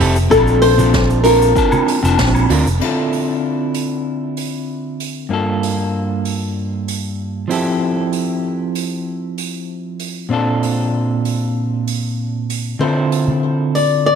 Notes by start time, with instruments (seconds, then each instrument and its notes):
0.00 fretless electric bass F1, clean electric guitar C4 E4 G4 A4, open hi-hat
0.16 shaker
0.30 fretless electric bass A#1, clean electric guitar C4 D4 F4 A4, nylon-string guitar A4, kick, low woodblock, shaker
0.47 shaker
0.62 nylon-string guitar C5, open hi-hat
0.77 clean electric guitar C4 D4 F4 A4, low conga, shaker
0.94 kick, snare, high conga, shaker
1.10 shaker
1.24 clean electric guitar C4 D4 F4 A4, nylon-string guitar A#4, open hi-hat, high bongo
1.42 shaker
1.55 clean electric guitar C4 D4 F4 A5, kick, shaker
1.72 high bongo, low conga, low woodblock, shaker
1.88 open hi-hat, high bongo
2.03 fretless electric bass F1, clean electric guitar C4 D4 F4 A5, shaker
2.19 fretless electric bass A#1, kick, snare, shaker
2.35 low woodblock, shaker
2.50 fretless electric bass D2, clean electric guitar C4 D4 F4 A#4, open hi-hat, high bongo
2.66 fretless electric bass F1, shaker
2.80 clean electric guitar D3 C4 E4 F4, crash
2.84 clean electric guitar A4
3.12 open hi-hat
3.74 open hi-hat
4.37 open hi-hat
5.00 open hi-hat
5.29 clean electric guitar G2 A#3 F4
5.33 clean electric guitar A4
5.63 open hi-hat
6.25 open hi-hat
6.88 open hi-hat
7.48 clean electric guitar F3 C4 E4 G4, open hi-hat
7.53 clean electric guitar A4
8.12 open hi-hat
8.75 open hi-hat
9.38 open hi-hat
9.99 open hi-hat
10.29 clean electric guitar A#2 C4 D4 F4
10.33 clean electric guitar A4
10.63 open hi-hat
11.25 open hi-hat
11.87 open hi-hat
12.50 open hi-hat
12.79 clean electric guitar D3 C4 E4 F4, nylon-string guitar C5
12.84 clean electric guitar A4
13.12 open hi-hat
13.28 low conga
13.75 nylon-string guitar D5, open hi-hat
14.06 nylon-string guitar D5, high bongo